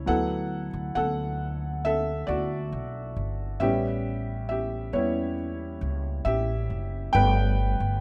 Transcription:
0.00 0.10 E3 medium
0.00 0.08 E4 medium
0.00 0.11 C#5 medium
0.06 0.70 D2 loud
0.06 0.66 F#3 medium
0.06 0.66 B3 medium
0.06 0.67 E4 medium
0.06 0.92 A4 medium
0.06 0.94 F#5 loud
0.73 0.94 D2 loud
0.95 2.24 D2 loud
0.95 1.81 A4 medium
0.95 1.80 F#5 loud
1.85 2.26 A4 medium
1.85 2.26 E5 loud
2.27 2.70 D2 loud
2.27 3.57 F#4 medium
2.27 3.64 D5 medium
2.72 3.14 B1 medium
3.17 3.58 G1 medium
3.60 4.89 A1 loud
3.60 4.92 G3 medium
3.60 4.93 B3 medium
3.60 4.93 C#4 medium
3.60 4.46 G4 medium
3.60 4.45 E5 loud
4.49 4.91 G4 medium
4.49 4.95 E5 medium
4.93 5.77 E2 medium
4.93 5.34 G3 soft
4.93 5.34 B3 soft
4.93 5.34 C#4 medium
4.93 5.79 E4 medium
4.93 5.78 C#5 medium
5.81 6.23 C#2 loud
6.25 6.67 A1 loud
6.25 7.11 G4 medium
6.25 7.16 E5 loud
6.70 7.11 F#1 medium
7.13 7.77 G1 loud
7.13 8.01 G3 medium
7.13 8.01 A3 medium
7.13 8.01 B3 medium
7.13 7.99 B4 medium
7.13 8.00 G5 loud
7.80 8.01 G1 loud

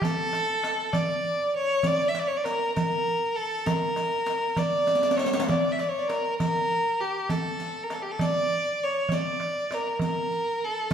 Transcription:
0.02 0.94 A4 loud
0.02 riq medium
0.02 darbuka dum medium
0.33 riq soft
0.33 darbuka tek medium
0.64 riq medium
0.64 darbuka tek medium
0.93 1.54 D5 medium
0.93 riq medium
0.93 darbuka dum medium
1.24 riq soft
1.24 darbuka ka soft
1.56 1.88 C#5 loud
1.83 2.09 D5 medium
1.83 riq medium
1.83 darbuka dum medium
2.08 2.21 E5 medium
2.15 riq medium
2.15 darbuka tek medium
2.19 2.28 D5 medium
2.27 2.38 C#5 medium
2.37 2.45 D5 medium
2.44 2.74 A#4 medium
2.44 riq medium
2.44 darbuka tek medium
2.75 3.37 A#4 medium
2.75 riq medium
2.75 darbuka dum medium
3.07 riq soft
3.07 darbuka ka soft
3.36 3.67 A4 medium
3.65 4.59 A#4 medium
3.65 riq medium
3.65 darbuka dum loud
3.96 riq soft
3.96 darbuka tek medium
4.26 riq medium
4.26 darbuka tek medium
4.56 5.18 D5 medium
4.56 riq medium
4.56 darbuka dum medium
4.87 riq medium
4.87 darbuka tek medium
4.95 riq medium
5.02 riq medium
5.02 darbuka ka medium
5.11 riq medium
5.16 5.47 C#5 medium
5.16 riq medium
5.16 darbuka tek medium
5.26 riq medium
5.33 riq medium
5.33 darbuka ka medium
5.40 riq medium
5.48 5.74 D5 medium
5.48 riq medium
5.48 darbuka dum medium
5.72 5.81 E5 medium
5.79 5.90 D5 medium
5.79 riq soft
5.79 darbuka tek medium
5.89 6.00 C#5 medium
5.99 6.10 C#5 medium
5.99 6.03 D5 medium
6.08 6.38 A#4 medium
6.08 riq soft
6.08 darbuka tek medium
6.38 7.02 A#4 medium
6.38 riq medium
6.38 darbuka dum medium
6.70 riq soft
6.70 darbuka ka soft
7.01 7.32 G4 medium
7.29 7.85 A4 medium
7.29 riq medium
7.29 darbuka dum medium
7.60 riq soft
7.83 7.94 A#4 medium
7.90 8.04 A4 medium
7.90 riq medium
7.90 darbuka tek medium
8.02 8.13 G4 medium
8.11 8.22 A4 medium
8.19 8.84 D5 medium
8.19 riq medium
8.19 darbuka dum medium
8.49 riq soft
8.49 darbuka ka soft
8.83 9.14 C#5 medium
9.09 9.75 D5 medium
9.09 riq medium
9.09 darbuka dum medium
9.40 darbuka tek medium
9.71 10.02 A#4 medium
9.71 riq medium
9.71 darbuka tek medium
9.99 10.66 A#4 medium
9.99 riq medium
9.99 darbuka dum medium
10.31 riq soft
10.31 darbuka ka soft
10.64 10.94 A4 medium
10.91 riq medium

